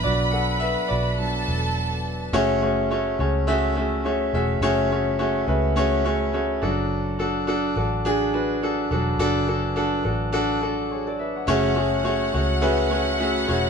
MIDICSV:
0, 0, Header, 1, 4, 480
1, 0, Start_track
1, 0, Key_signature, 3, "minor"
1, 0, Tempo, 571429
1, 39, Time_signature, 4, 2, 24, 8
1, 11505, End_track
2, 0, Start_track
2, 0, Title_t, "Violin section"
2, 0, Program_c, 0, 48
2, 0, Note_on_c, 0, 71, 86
2, 0, Note_on_c, 0, 83, 100
2, 970, Note_off_c, 0, 71, 0
2, 970, Note_off_c, 0, 83, 0
2, 1008, Note_on_c, 0, 69, 88
2, 1010, Note_on_c, 0, 81, 98
2, 1945, Note_off_c, 0, 69, 0
2, 1947, Note_off_c, 0, 81, 0
2, 9638, Note_on_c, 0, 66, 85
2, 9643, Note_on_c, 0, 78, 103
2, 11505, Note_off_c, 0, 66, 0
2, 11505, Note_off_c, 0, 78, 0
2, 11505, End_track
3, 0, Start_track
3, 0, Title_t, "Grand piano"
3, 0, Program_c, 1, 0
3, 0, Control_c, 1, 64, 127
3, 0, Note_on_c, 1, 54, 54
3, 0, Note_on_c, 1, 59, 50
3, 0, Note_on_c, 1, 62, 60
3, 0, Note_on_c, 1, 66, 76
3, 0, Note_on_c, 1, 71, 73
3, 0, Note_on_c, 1, 74, 93
3, 0, Note_on_c, 1, 76, 98
3, 30, Note_off_c, 1, 74, 0
3, 30, Note_on_c, 1, 74, 101
3, 35, Note_off_c, 1, 54, 0
3, 35, Note_on_c, 1, 54, 58
3, 38, Note_off_c, 1, 59, 0
3, 38, Note_on_c, 1, 59, 57
3, 45, Note_off_c, 1, 66, 0
3, 45, Note_on_c, 1, 66, 80
3, 47, Note_off_c, 1, 62, 0
3, 47, Note_on_c, 1, 62, 62
3, 262, Note_on_c, 1, 78, 100
3, 266, Note_off_c, 1, 66, 0
3, 279, Note_on_c, 1, 69, 76
3, 282, Note_off_c, 1, 74, 0
3, 502, Note_off_c, 1, 69, 0
3, 502, Note_off_c, 1, 76, 0
3, 502, Note_on_c, 1, 76, 113
3, 518, Note_off_c, 1, 78, 0
3, 522, Note_off_c, 1, 71, 0
3, 522, Note_on_c, 1, 71, 79
3, 741, Note_on_c, 1, 74, 90
3, 744, Note_off_c, 1, 71, 0
3, 758, Note_off_c, 1, 76, 0
3, 761, Note_on_c, 1, 66, 66
3, 980, Note_off_c, 1, 54, 0
3, 984, Note_off_c, 1, 59, 0
3, 987, Note_off_c, 1, 62, 0
3, 993, Note_on_c, 1, 54, 50
3, 997, Note_on_c, 1, 59, 47
3, 1000, Note_on_c, 1, 62, 56
3, 1212, Note_off_c, 1, 54, 0
3, 1215, Note_off_c, 1, 59, 0
3, 1216, Note_off_c, 1, 62, 0
3, 1678, Note_off_c, 1, 74, 0
3, 1688, Note_off_c, 1, 66, 0
3, 1959, Note_on_c, 1, 57, 127
3, 1960, Note_on_c, 1, 61, 115
3, 1960, Note_on_c, 1, 66, 114
3, 1962, Note_on_c, 1, 49, 81
3, 1965, Note_on_c, 1, 68, 110
3, 1967, Note_on_c, 1, 73, 127
3, 1971, Control_c, 1, 64, 0
3, 2116, Control_c, 1, 64, 127
3, 2154, Note_off_c, 1, 57, 0
3, 2154, Note_off_c, 1, 61, 0
3, 2155, Note_off_c, 1, 66, 0
3, 2157, Note_off_c, 1, 68, 0
3, 2158, Note_off_c, 1, 73, 0
3, 2198, Note_on_c, 1, 57, 91
3, 2202, Note_on_c, 1, 61, 84
3, 2204, Note_on_c, 1, 66, 80
3, 2207, Note_on_c, 1, 68, 88
3, 2207, Note_on_c, 1, 73, 102
3, 2393, Note_off_c, 1, 57, 0
3, 2395, Note_off_c, 1, 61, 0
3, 2396, Note_off_c, 1, 66, 0
3, 2398, Note_off_c, 1, 68, 0
3, 2398, Note_off_c, 1, 73, 0
3, 2440, Note_on_c, 1, 61, 92
3, 2443, Note_on_c, 1, 57, 100
3, 2444, Note_on_c, 1, 66, 85
3, 2446, Note_on_c, 1, 68, 82
3, 2447, Note_on_c, 1, 73, 104
3, 2634, Note_off_c, 1, 61, 0
3, 2636, Note_off_c, 1, 57, 0
3, 2636, Note_off_c, 1, 66, 0
3, 2637, Note_off_c, 1, 68, 0
3, 2638, Note_off_c, 1, 73, 0
3, 2648, Note_off_c, 1, 49, 0
3, 2679, Note_on_c, 1, 57, 89
3, 2679, Note_on_c, 1, 61, 75
3, 2683, Note_on_c, 1, 66, 78
3, 2683, Note_on_c, 1, 68, 83
3, 2689, Note_on_c, 1, 73, 96
3, 2874, Note_off_c, 1, 57, 0
3, 2874, Note_off_c, 1, 61, 0
3, 2876, Note_off_c, 1, 66, 0
3, 2876, Note_off_c, 1, 68, 0
3, 2879, Note_off_c, 1, 73, 0
3, 2916, Note_on_c, 1, 57, 117
3, 2919, Note_on_c, 1, 61, 100
3, 2919, Note_on_c, 1, 68, 100
3, 2922, Note_on_c, 1, 66, 112
3, 2922, Note_on_c, 1, 76, 126
3, 3113, Note_off_c, 1, 57, 0
3, 3114, Note_off_c, 1, 61, 0
3, 3114, Note_off_c, 1, 68, 0
3, 3115, Note_off_c, 1, 66, 0
3, 3116, Note_off_c, 1, 76, 0
3, 3158, Note_on_c, 1, 57, 94
3, 3161, Note_on_c, 1, 61, 88
3, 3163, Note_on_c, 1, 66, 86
3, 3164, Note_on_c, 1, 68, 85
3, 3165, Note_on_c, 1, 76, 99
3, 3354, Note_off_c, 1, 57, 0
3, 3355, Note_off_c, 1, 61, 0
3, 3356, Note_off_c, 1, 66, 0
3, 3357, Note_off_c, 1, 68, 0
3, 3357, Note_off_c, 1, 76, 0
3, 3399, Note_on_c, 1, 57, 92
3, 3399, Note_on_c, 1, 61, 82
3, 3404, Note_on_c, 1, 66, 85
3, 3407, Note_on_c, 1, 68, 84
3, 3407, Note_on_c, 1, 73, 102
3, 3594, Note_off_c, 1, 57, 0
3, 3594, Note_off_c, 1, 61, 0
3, 3597, Note_off_c, 1, 66, 0
3, 3598, Note_off_c, 1, 68, 0
3, 3598, Note_off_c, 1, 73, 0
3, 3645, Note_on_c, 1, 57, 98
3, 3647, Note_on_c, 1, 61, 81
3, 3650, Note_on_c, 1, 66, 83
3, 3650, Note_on_c, 1, 76, 107
3, 3651, Note_on_c, 1, 68, 89
3, 3837, Note_off_c, 1, 57, 0
3, 3838, Note_off_c, 1, 61, 0
3, 3840, Note_off_c, 1, 66, 0
3, 3840, Note_off_c, 1, 68, 0
3, 3840, Note_off_c, 1, 76, 0
3, 3882, Note_on_c, 1, 57, 125
3, 3882, Note_on_c, 1, 61, 107
3, 3886, Note_on_c, 1, 49, 78
3, 3886, Note_on_c, 1, 73, 127
3, 3887, Note_on_c, 1, 66, 110
3, 3887, Note_on_c, 1, 68, 112
3, 4076, Note_off_c, 1, 57, 0
3, 4076, Note_off_c, 1, 61, 0
3, 4078, Note_off_c, 1, 66, 0
3, 4078, Note_off_c, 1, 73, 0
3, 4079, Note_off_c, 1, 68, 0
3, 4126, Note_on_c, 1, 57, 91
3, 4129, Note_on_c, 1, 61, 88
3, 4130, Note_on_c, 1, 66, 86
3, 4132, Note_on_c, 1, 68, 84
3, 4133, Note_on_c, 1, 73, 105
3, 4318, Note_off_c, 1, 57, 0
3, 4320, Note_off_c, 1, 61, 0
3, 4320, Note_off_c, 1, 66, 0
3, 4321, Note_off_c, 1, 68, 0
3, 4322, Note_off_c, 1, 73, 0
3, 4359, Note_on_c, 1, 57, 101
3, 4359, Note_on_c, 1, 61, 97
3, 4361, Note_on_c, 1, 66, 92
3, 4361, Note_on_c, 1, 68, 84
3, 4362, Note_on_c, 1, 73, 107
3, 4554, Note_off_c, 1, 61, 0
3, 4555, Note_off_c, 1, 57, 0
3, 4555, Note_off_c, 1, 68, 0
3, 4556, Note_off_c, 1, 66, 0
3, 4556, Note_off_c, 1, 73, 0
3, 4571, Note_off_c, 1, 49, 0
3, 4595, Note_on_c, 1, 57, 85
3, 4598, Note_on_c, 1, 61, 74
3, 4602, Note_on_c, 1, 68, 75
3, 4603, Note_on_c, 1, 66, 78
3, 4605, Note_on_c, 1, 71, 101
3, 4792, Note_off_c, 1, 57, 0
3, 4794, Note_off_c, 1, 61, 0
3, 4796, Note_off_c, 1, 68, 0
3, 4797, Note_off_c, 1, 66, 0
3, 4797, Note_off_c, 1, 71, 0
3, 4837, Note_on_c, 1, 57, 108
3, 4838, Note_on_c, 1, 61, 110
3, 4840, Note_on_c, 1, 66, 112
3, 4842, Note_on_c, 1, 68, 102
3, 4845, Note_on_c, 1, 73, 123
3, 5034, Note_off_c, 1, 57, 0
3, 5034, Note_off_c, 1, 61, 0
3, 5035, Note_off_c, 1, 66, 0
3, 5036, Note_off_c, 1, 68, 0
3, 5038, Note_off_c, 1, 73, 0
3, 5077, Note_on_c, 1, 57, 102
3, 5079, Note_on_c, 1, 61, 85
3, 5080, Note_on_c, 1, 66, 89
3, 5083, Note_on_c, 1, 68, 85
3, 5086, Note_on_c, 1, 73, 110
3, 5274, Note_off_c, 1, 57, 0
3, 5275, Note_off_c, 1, 61, 0
3, 5275, Note_off_c, 1, 66, 0
3, 5277, Note_off_c, 1, 68, 0
3, 5278, Note_off_c, 1, 73, 0
3, 5319, Note_on_c, 1, 66, 88
3, 5321, Note_on_c, 1, 57, 88
3, 5321, Note_on_c, 1, 61, 83
3, 5327, Note_on_c, 1, 68, 84
3, 5327, Note_on_c, 1, 73, 98
3, 5515, Note_off_c, 1, 66, 0
3, 5516, Note_off_c, 1, 57, 0
3, 5516, Note_off_c, 1, 61, 0
3, 5519, Note_off_c, 1, 68, 0
3, 5519, Note_off_c, 1, 73, 0
3, 5558, Note_on_c, 1, 62, 99
3, 5562, Note_on_c, 1, 54, 87
3, 5563, Note_on_c, 1, 66, 90
3, 5568, Note_on_c, 1, 69, 105
3, 5574, Control_c, 1, 64, 0
3, 5727, Control_c, 1, 64, 127
3, 5956, Note_off_c, 1, 62, 0
3, 5959, Note_off_c, 1, 66, 0
3, 5961, Note_off_c, 1, 69, 0
3, 6039, Note_on_c, 1, 62, 99
3, 6042, Note_on_c, 1, 66, 91
3, 6045, Note_on_c, 1, 69, 108
3, 6235, Note_off_c, 1, 62, 0
3, 6236, Note_off_c, 1, 66, 0
3, 6238, Note_off_c, 1, 69, 0
3, 6249, Note_off_c, 1, 54, 0
3, 6276, Note_on_c, 1, 62, 107
3, 6278, Note_on_c, 1, 66, 89
3, 6286, Note_on_c, 1, 69, 114
3, 6473, Note_off_c, 1, 62, 0
3, 6474, Note_off_c, 1, 66, 0
3, 6478, Note_off_c, 1, 69, 0
3, 6517, Note_on_c, 1, 62, 81
3, 6521, Note_on_c, 1, 66, 89
3, 6527, Note_on_c, 1, 69, 96
3, 6714, Note_off_c, 1, 62, 0
3, 6716, Note_off_c, 1, 66, 0
3, 6719, Note_off_c, 1, 69, 0
3, 6761, Note_on_c, 1, 62, 112
3, 6765, Note_on_c, 1, 66, 100
3, 6770, Note_on_c, 1, 68, 122
3, 6956, Note_off_c, 1, 62, 0
3, 6958, Note_off_c, 1, 66, 0
3, 6960, Note_off_c, 1, 68, 0
3, 7003, Note_on_c, 1, 62, 98
3, 7005, Note_on_c, 1, 66, 89
3, 7005, Note_on_c, 1, 71, 99
3, 7197, Note_off_c, 1, 62, 0
3, 7198, Note_off_c, 1, 66, 0
3, 7198, Note_off_c, 1, 71, 0
3, 7246, Note_on_c, 1, 62, 89
3, 7248, Note_on_c, 1, 66, 86
3, 7253, Note_on_c, 1, 69, 108
3, 7438, Note_off_c, 1, 62, 0
3, 7440, Note_off_c, 1, 66, 0
3, 7442, Note_off_c, 1, 69, 0
3, 7485, Note_on_c, 1, 62, 93
3, 7490, Note_on_c, 1, 54, 81
3, 7491, Note_on_c, 1, 66, 82
3, 7493, Note_on_c, 1, 69, 104
3, 7678, Note_off_c, 1, 62, 0
3, 7681, Note_off_c, 1, 66, 0
3, 7682, Note_off_c, 1, 69, 0
3, 7722, Note_on_c, 1, 66, 107
3, 7723, Note_on_c, 1, 62, 127
3, 7728, Note_on_c, 1, 69, 127
3, 7916, Note_off_c, 1, 66, 0
3, 7917, Note_off_c, 1, 62, 0
3, 7920, Note_off_c, 1, 69, 0
3, 7963, Note_on_c, 1, 62, 95
3, 7967, Note_on_c, 1, 66, 88
3, 7968, Note_on_c, 1, 69, 108
3, 8157, Note_off_c, 1, 62, 0
3, 8159, Note_off_c, 1, 66, 0
3, 8159, Note_off_c, 1, 69, 0
3, 8173, Note_off_c, 1, 54, 0
3, 8198, Note_on_c, 1, 62, 103
3, 8202, Note_on_c, 1, 66, 93
3, 8204, Note_on_c, 1, 69, 113
3, 8394, Note_off_c, 1, 62, 0
3, 8397, Note_off_c, 1, 66, 0
3, 8397, Note_off_c, 1, 69, 0
3, 8433, Note_on_c, 1, 62, 82
3, 8440, Note_on_c, 1, 66, 82
3, 8442, Note_on_c, 1, 69, 90
3, 8632, Note_off_c, 1, 62, 0
3, 8636, Note_off_c, 1, 66, 0
3, 8636, Note_off_c, 1, 69, 0
3, 8673, Note_on_c, 1, 62, 116
3, 8676, Note_on_c, 1, 66, 113
3, 8681, Note_on_c, 1, 69, 125
3, 8872, Note_off_c, 1, 62, 0
3, 8873, Note_off_c, 1, 66, 0
3, 8876, Note_off_c, 1, 69, 0
3, 8916, Note_on_c, 1, 62, 94
3, 8922, Note_on_c, 1, 66, 88
3, 8928, Note_on_c, 1, 69, 104
3, 9114, Note_off_c, 1, 62, 0
3, 9116, Note_off_c, 1, 66, 0
3, 9120, Note_off_c, 1, 69, 0
3, 9165, Note_on_c, 1, 73, 66
3, 9166, Note_on_c, 1, 68, 59
3, 9292, Note_off_c, 1, 73, 0
3, 9293, Note_off_c, 1, 68, 0
3, 9299, Note_on_c, 1, 74, 76
3, 9303, Note_on_c, 1, 69, 61
3, 9399, Note_off_c, 1, 74, 0
3, 9401, Note_off_c, 1, 69, 0
3, 9401, Note_on_c, 1, 76, 75
3, 9408, Note_on_c, 1, 71, 63
3, 9530, Note_off_c, 1, 76, 0
3, 9534, Note_off_c, 1, 71, 0
3, 9539, Note_on_c, 1, 78, 65
3, 9545, Note_on_c, 1, 73, 51
3, 9630, Note_off_c, 1, 73, 0
3, 9635, Note_on_c, 1, 57, 127
3, 9640, Note_on_c, 1, 66, 107
3, 9642, Note_on_c, 1, 61, 121
3, 9642, Note_on_c, 1, 73, 127
3, 9643, Note_on_c, 1, 49, 85
3, 9644, Note_on_c, 1, 68, 112
3, 9653, Control_c, 1, 64, 0
3, 9766, Note_off_c, 1, 78, 0
3, 9789, Control_c, 1, 64, 127
3, 9833, Note_off_c, 1, 57, 0
3, 9835, Note_off_c, 1, 66, 0
3, 9836, Note_off_c, 1, 61, 0
3, 9837, Note_off_c, 1, 68, 0
3, 9837, Note_off_c, 1, 73, 0
3, 9871, Note_on_c, 1, 57, 95
3, 9871, Note_on_c, 1, 61, 82
3, 9875, Note_on_c, 1, 66, 86
3, 9875, Note_on_c, 1, 68, 90
3, 9876, Note_on_c, 1, 73, 101
3, 10071, Note_off_c, 1, 57, 0
3, 10071, Note_off_c, 1, 61, 0
3, 10073, Note_off_c, 1, 66, 0
3, 10073, Note_off_c, 1, 68, 0
3, 10074, Note_off_c, 1, 73, 0
3, 10114, Note_on_c, 1, 57, 98
3, 10115, Note_on_c, 1, 61, 92
3, 10115, Note_on_c, 1, 66, 90
3, 10118, Note_on_c, 1, 68, 88
3, 10118, Note_on_c, 1, 73, 107
3, 10312, Note_off_c, 1, 57, 0
3, 10313, Note_off_c, 1, 61, 0
3, 10313, Note_off_c, 1, 66, 0
3, 10315, Note_off_c, 1, 68, 0
3, 10315, Note_off_c, 1, 73, 0
3, 10330, Note_off_c, 1, 49, 0
3, 10360, Note_on_c, 1, 61, 83
3, 10361, Note_on_c, 1, 57, 84
3, 10364, Note_on_c, 1, 68, 73
3, 10365, Note_on_c, 1, 66, 83
3, 10369, Note_on_c, 1, 73, 95
3, 10555, Note_off_c, 1, 61, 0
3, 10556, Note_off_c, 1, 57, 0
3, 10558, Note_off_c, 1, 66, 0
3, 10558, Note_off_c, 1, 68, 0
3, 10560, Note_off_c, 1, 73, 0
3, 10594, Note_on_c, 1, 57, 116
3, 10597, Note_on_c, 1, 61, 106
3, 10599, Note_on_c, 1, 66, 102
3, 10601, Note_on_c, 1, 68, 100
3, 10603, Note_on_c, 1, 71, 127
3, 10793, Note_off_c, 1, 57, 0
3, 10794, Note_off_c, 1, 61, 0
3, 10795, Note_off_c, 1, 66, 0
3, 10796, Note_off_c, 1, 68, 0
3, 10797, Note_off_c, 1, 71, 0
3, 10836, Note_on_c, 1, 57, 98
3, 10838, Note_on_c, 1, 61, 90
3, 10841, Note_on_c, 1, 66, 82
3, 10842, Note_on_c, 1, 73, 96
3, 10844, Note_on_c, 1, 68, 85
3, 11033, Note_off_c, 1, 57, 0
3, 11034, Note_off_c, 1, 61, 0
3, 11036, Note_off_c, 1, 66, 0
3, 11037, Note_off_c, 1, 73, 0
3, 11038, Note_off_c, 1, 68, 0
3, 11080, Note_on_c, 1, 57, 95
3, 11084, Note_on_c, 1, 61, 88
3, 11086, Note_on_c, 1, 66, 83
3, 11088, Note_on_c, 1, 68, 84
3, 11089, Note_on_c, 1, 76, 106
3, 11275, Note_off_c, 1, 57, 0
3, 11277, Note_off_c, 1, 61, 0
3, 11278, Note_off_c, 1, 66, 0
3, 11279, Note_off_c, 1, 68, 0
3, 11280, Note_off_c, 1, 76, 0
3, 11316, Note_on_c, 1, 57, 94
3, 11320, Note_on_c, 1, 61, 82
3, 11324, Note_on_c, 1, 66, 93
3, 11324, Note_on_c, 1, 68, 85
3, 11327, Note_on_c, 1, 73, 104
3, 11505, Note_off_c, 1, 57, 0
3, 11505, Note_off_c, 1, 61, 0
3, 11505, Note_off_c, 1, 66, 0
3, 11505, Note_off_c, 1, 68, 0
3, 11505, Note_off_c, 1, 73, 0
3, 11505, End_track
4, 0, Start_track
4, 0, Title_t, "Fingered electric bass"
4, 0, Program_c, 2, 33
4, 43, Note_on_c, 2, 35, 106
4, 625, Note_off_c, 2, 35, 0
4, 763, Note_on_c, 2, 35, 70
4, 1208, Note_off_c, 2, 35, 0
4, 1243, Note_on_c, 2, 28, 93
4, 1929, Note_off_c, 2, 28, 0
4, 1957, Note_on_c, 2, 30, 104
4, 2646, Note_off_c, 2, 30, 0
4, 2680, Note_on_c, 2, 37, 80
4, 3608, Note_off_c, 2, 37, 0
4, 3640, Note_on_c, 2, 28, 87
4, 3864, Note_off_c, 2, 28, 0
4, 3872, Note_on_c, 2, 30, 100
4, 4564, Note_off_c, 2, 30, 0
4, 4599, Note_on_c, 2, 37, 86
4, 5527, Note_off_c, 2, 37, 0
4, 5562, Note_on_c, 2, 30, 102
4, 6489, Note_off_c, 2, 30, 0
4, 6520, Note_on_c, 2, 33, 77
4, 7448, Note_off_c, 2, 33, 0
4, 7483, Note_on_c, 2, 28, 93
4, 7706, Note_off_c, 2, 28, 0
4, 7717, Note_on_c, 2, 30, 107
4, 8406, Note_off_c, 2, 30, 0
4, 8441, Note_on_c, 2, 33, 79
4, 9609, Note_off_c, 2, 33, 0
4, 9640, Note_on_c, 2, 30, 115
4, 10328, Note_off_c, 2, 30, 0
4, 10366, Note_on_c, 2, 37, 84
4, 11291, Note_off_c, 2, 37, 0
4, 11328, Note_on_c, 2, 28, 90
4, 11505, Note_off_c, 2, 28, 0
4, 11505, End_track
0, 0, End_of_file